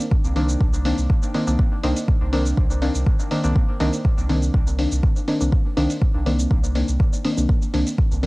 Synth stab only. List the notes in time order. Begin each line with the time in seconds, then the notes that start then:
0.36 D#3 A#3 C4 D4
0.85 D#3 A#3 C4 D4
1.34 D#3 A#3 C4 D4
1.47 D#3 A#3 C4 D4
1.84 D#3 A#3 C4 D4
2.33 D#3 A#3 C4 D4
2.82 D#3 A#3 C4 D4
3.31 D#3 A#3 C4 D4
3.44 D#3 A#3 C4 D4
3.80 D#3 A#3 C4 D4
4.29 D#3 A#3 C4 D4
4.79 D#3 A#3 C4 D4
5.28 D#3 A#3 C4 D4
5.40 D#3 A#3 C4 D4
5.77 D#3 A#3 C4 D4
6.26 D#3 A#3 C4 D4
6.75 D#3 A#3 C4 D4
7.24 D#3 A#3 C4 D4
7.37 D#3 A#3 C4 D4
7.74 D#3 A#3 C4 D4
8.23 D#3 A#3 C4 D4